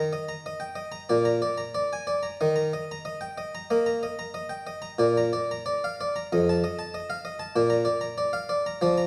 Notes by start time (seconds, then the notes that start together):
Already playing: D#3 A#5
0.13 D#5
0.28 A#5
0.46 D#5
0.60 G5
0.75 D#5
0.92 A#5
1.09 A#2 D5
1.25 A#5
1.42 D5
1.58 A#5
1.75 D5
1.93 G#5
2.07 D5
2.23 A#5
2.41 D#3 D#5
2.56 A#5
2.73 D#5
2.91 A#5
3.05 D#5
3.21 G5
3.38 D#5
3.55 A#5
3.70 A#3 D#5
3.86 A#5
4.03 D#5
4.19 A#5
4.34 D#5
4.49 G5
4.67 D#5
4.82 A#5
4.99 A#2 D5
5.17 A#5
5.33 D5
5.51 A#5
5.66 D5
5.84 F5
6.01 D5
6.16 A#5
6.32 F2 D#5
6.49 A5
6.64 D#5
6.79 A5
6.94 D#5
7.10 F5
7.25 D#5
7.39 A5
7.56 A#2 D5
7.70 A#5
7.85 D5
8.01 A#5
8.18 D5
8.33 F5
8.49 D5
8.66 A#5
8.81 F3 D5
8.98 A#5